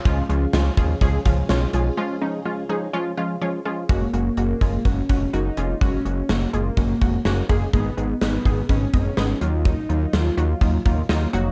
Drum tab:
HH |xxxxxxxx|--------|xxxxxxxx|xxxxxxxx|
SD |--o---o-|--------|--------|--o---o-|
BD |o--ooo--|--------|o--ooo--|o---oo-o|

HH |xxxxxxxx|xxxxxxxx|
SD |--o---o-|--o---o-|
BD |o--ooo--|o---oo--|